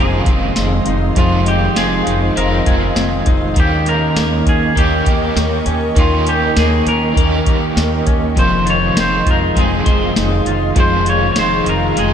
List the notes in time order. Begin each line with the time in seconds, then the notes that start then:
Already playing: F1 F2 C3 D#3 F3 G#3 C4 D#4 D#5 F5 C6
0.00 F4 G#4
0.24 F1 C4 F4, kick, closed hi-hat
0.29 D#3 G#3
0.56 F1 C4, snare, closed hi-hat
0.86 F1 D#4, closed hi-hat
1.15 F1 F2 C3 D#3 F3 G#3 C4 F4, kick, closed hi-hat
1.46 D#4 G4, closed hi-hat
1.75 F1 D#3 G#3 C4 G#4, snare, closed hi-hat
1.79 C4 F4
2.06 F1 D#4, closed hi-hat
2.35 F1 F2 C3 D#3 G#3 C4 F4 A#4, closed hi-hat
2.65 F1 G#3 C4 F4 G#4, kick, closed hi-hat
2.71 D#3
2.96 F1 C4, snare, closed hi-hat
3.26 F1 D#4, kick, closed hi-hat
3.54 D#2 D#3 A#3 A#4 G5 C#6, kick, closed hi-hat
3.60 C#4 G4
3.86 C#4 A#4, closed hi-hat
4.16 D#2 A#3, snare, closed hi-hat
4.46 D#2 C#4 G#4, kick, closed hi-hat
4.75 D#2 D#3 A#3 C#4 G4, kick, closed hi-hat
5.05 D#2 C#4 G4, kick, closed hi-hat
5.10 A#3
5.36 D#2 A#3, snare, closed hi-hat
5.66 D#2 C#4, closed hi-hat
5.95 D#2 D#3 A#3 C#4 F4 G4, kick, closed hi-hat
6.26 C#4 G4, closed hi-hat
6.55 D#2 D#3 A#3 G#4, snare, closed hi-hat
6.59 C#4
6.86 D#2 C#4 A#4, closed hi-hat
7.14 D#2 D#3 A#3, kick, closed hi-hat
7.20 C#4 G4
7.46 D#2 G4, kick, closed hi-hat
7.76 D#2 A#3, snare, closed hi-hat
8.06 D#2 C#4, kick, closed hi-hat
8.35 F1 F2 C3 D#3 F3 G#3 G#4 D#5 F5 C6, kick, closed hi-hat
8.39 F4 C5
8.66 F4, closed hi-hat
8.70 C#5
8.95 F1 D#3 G#3 C4 D#4, snare, closed hi-hat
9.00 F4 C5
9.26 F1 F4, kick, closed hi-hat
9.31 A#4
9.55 F1 F2 C3 D#3 G#3 C4 F4, kick, closed hi-hat
9.61 G#4
9.84 F1 C4 F4 C5, kick, closed hi-hat
9.88 D#3 G#3
10.16 F1 D#4, snare, closed hi-hat
10.46 F1 F4, closed hi-hat
10.75 F1 F2 C3 D#3 F3 G#3 C4 A#5, kick, closed hi-hat
10.79 F4 C5
11.06 F4 C#5, closed hi-hat
11.32 D#3 C#5, snare, closed hi-hat
11.36 F1 G#3 C4 D#4 F4 C5
11.66 F1 F4 A#4, closed hi-hat
11.95 F1 F2 C3 D#3 G#3 C4 G#4, closed hi-hat
11.99 F4